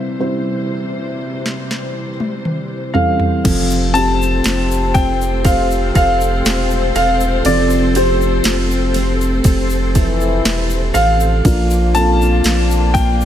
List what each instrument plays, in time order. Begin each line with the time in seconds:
Already playing: felt piano C3 G3 C4 E4 C5, string section C3 E3 G3 C5, grand piano E5
0.19 felt piano G3 C4 E4 C5
1.46 snare
1.71 snare
2.20 high tom
2.45 mid tom
2.94 felt piano E3 G3 C4 A4, grand piano F5, floor tom
3.20 floor tom
3.44 sub bass F1, felt piano C3 C4 F4 A4, french horn section C3 C4, steel-string acoustic guitar F3, string section A3 C4 A4 C5, kick, crash, ride, shaker
3.70 shaker
3.94 steel-string acoustic guitar C4, felt piano C4 F4 G4, grand piano A5, ride, shaker
4.22 shaker
4.44 sub bass F1, steel-string acoustic guitar F4, snare, ride, shaker
4.71 shaker
4.94 steel-string acoustic guitar C4, grand piano G5, kick, ride, shaker
5.21 shaker
5.45 steel-string acoustic guitar F4, grand piano F5, kick, ride, shaker
5.71 shaker
5.95 sub bass F1, steel-string acoustic guitar A4, grand piano F5, kick, ride, shaker
6.21 shaker
6.45 sub bass E1, steel-string acoustic guitar F4, snare, ride, shaker
6.70 shaker
6.95 sub bass E1, steel-string acoustic guitar A4, grand piano F5, ride, shaker
7.20 shaker
7.45 sub bass F1, felt piano C3 C4 F4 A4, steel-string acoustic guitar F3, grand piano D5, ride, shaker
7.70 shaker
7.95 felt piano C4 F4 G4, steel-string acoustic guitar C4, grand piano C5, ride, shaker
8.21 shaker
8.44 sub bass F1, steel-string acoustic guitar F4, snare, ride, shaker
8.71 shaker
8.94 steel-string acoustic guitar C4, ride, shaker
9.21 shaker
9.44 sub bass F1, kick, ride, shaker
9.70 shaker
9.95 french horn section E3 E4, steel-string acoustic guitar A4, kick, ride, shaker
10.21 shaker
10.45 sub bass E1, snare, ride, shaker
10.70 shaker
10.94 sub bass A1, steel-string acoustic guitar A4, grand piano F5, ride, shaker
11.20 shaker
11.44 sub bass A#1, felt piano A#2 F3 D4 F4 A#4, french horn section F3 F4, string section A#3 D4 F4, kick, ride, shaker
11.70 shaker
11.94 steel-string acoustic guitar A#3, felt piano C4 F4 A4, grand piano A5, ride, shaker
12.01 felt piano D4
12.22 shaker
12.43 sub bass A#1, steel-string acoustic guitar D4, snare, ride, shaker
12.71 shaker
12.94 steel-string acoustic guitar A#3, grand piano G5, kick, ride, shaker
13.21 shaker